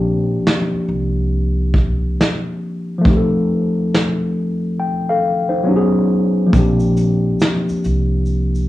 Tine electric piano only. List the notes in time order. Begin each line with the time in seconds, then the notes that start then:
Already playing: F3 A#3 C4 D4 G4
2.98 F3 A3
3.04 C4 D#4
3.10 G4
3.17 A4
4.80 G5
5.09 A4 F5
5.49 D#4 C5
5.64 F#3 B3 C#4
5.68 D#4 G4
5.76 G#4
6.47 F3 A#3
6.53 C4 D4
6.59 G4